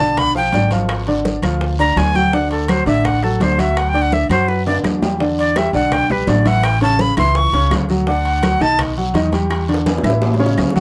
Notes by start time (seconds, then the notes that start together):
Already playing: A5
0.00 B1 D3 D4 D5, high bongo, high conga
0.17 B5, high bongo, high conga, low conga, high timbale, long guiro, claves
0.35 F3 F4 F5 G5, high bongo, high conga
0.53 G#1 D3 D4 D5, high bongo, low bongo, high conga, high timbale, short guiro
0.71 F3 F4 F5, high bongo, high conga, high timbale, short guiro
0.89 high bongo, high timbale, long guiro, claves
1.07 D3 D4 D5, high conga, high timbale
1.25 high bongo, high conga, short guiro
1.42 D2 F3 F4 F5, high bongo, high conga, high timbale, short guiro, claves
1.61 high bongo, high conga, long guiro
1.79 D3 D4 D5 A#5, high bongo, high conga, high timbale
1.96 D2 G#5, high bongo, low bongo, high conga, high timbale, low timbale, short guiro, claves
2.15 F#3 F#4 F#5 G5, high bongo, high conga, short guiro
2.33 D3 D4 D5 F#5, high bongo, long guiro
2.51 A4, high conga, high timbale
2.68 F#3 F#4 C5 F#5, high bongo, high conga, high timbale, short guiro, claves
2.86 A1 D3 D4 D5 E5, high bongo, high conga, short guiro
3.05 F#5, high bongo, high conga, low conga, high timbale, long guiro, claves
3.22 F#3 F#4 A4 F#5, high bongo, high conga
3.40 D2 D3 D4 C5 D5, high bongo, low bongo, high conga, high timbale, low timbale, short guiro
3.58 F#3 F#4 E5 F#5, high bongo, high conga, high timbale, short guiro
3.77 F#5, high bongo, high timbale, long guiro, claves
3.89 G5
3.94 D3 D4 D5, high conga, high timbale
4.02 F#5
4.12 E5, high bongo, high conga, short guiro
4.29 F#2 F#3 F#4 C5 F#5, high bongo, high conga, high timbale, short guiro, claves
4.48 B4, high bongo, high conga, long guiro
4.66 D3 D4 D5, high conga, high timbale
4.84 E2, low bongo, high conga, low timbale, short guiro, claves
5.02 G3 G4 G5, low bongo, high conga, low timbale, short guiro
5.20 D3 D4 D5, high bongo, high conga, long guiro
5.39 D5, high conga, high timbale
5.56 G3 G4 E5 G5, high bongo, high conga, high timbale, short guiro, claves
5.73 B1 D3 D4 D5 F#5, high bongo, high conga, short guiro
5.92 G5, high bongo, high conga, low conga, high timbale, long guiro, claves
6.10 G3 G4 B4 G5, high bongo, high conga, low conga
6.27 A1 D3 D4 D5, high bongo, low bongo, high conga, high timbale, low timbale, short guiro
6.45 E3 E4 E5 F#5, high bongo, high conga, high timbale, short guiro
6.63 G5, high bongo, high conga, high timbale, long guiro, claves
6.81 C#3 C#4 C#5 A5, high conga, high timbale
6.99 B5, high bongo, high conga, short guiro
7.17 C#2 E3 E4 E5 C6, high bongo, high conga, high timbale, short guiro, claves
7.35 C#6, high bongo, high conga, long guiro
7.53 C#2 C#3 C#4 C#5, high bongo, high conga, high timbale
7.71 D2, high bongo, low bongo, high conga, high timbale, low timbale, short guiro, claves
7.89 F#3 F#4 F#5, high bongo, high conga, short guiro
8.07 D3 D4 D5 F#5, high bongo, long guiro
8.25 high conga, high timbale
8.43 F#3 F#4 F#5, high bongo, high conga, high timbale, short guiro, claves
8.60 B1 D#3 D#4 D#5 A5, high bongo, high conga, short guiro
8.79 high bongo, high conga, low conga, high timbale, long guiro, claves
8.97 F#3 F#4 F#5, high bongo, high conga
9.14 E2 D#3 D#4 D#5, high bongo, low bongo, high conga, high timbale, short guiro
9.32 G3 G4 G5, high bongo, high conga, high timbale, short guiro
9.50 high bongo, high timbale, long guiro, claves
9.69 D3 D4 D5, high conga, high timbale
9.74 high bongo
9.86 high bongo, high conga, high timbale, short guiro
9.98 low bongo
10.03 A1 E3 E4 E5, high conga, high timbale, short guiro, claves
10.10 low bongo
10.22 low bongo, high conga, low timbale, long guiro
10.34 low bongo
10.39 C#3 C#4 C#5, high conga, low timbale
10.46 low bongo
10.57 D2, low bongo, high conga, low timbale, short guiro, claves
10.70 low bongo
10.75 F#3 F#4 F#5, high conga, low timbale, short guiro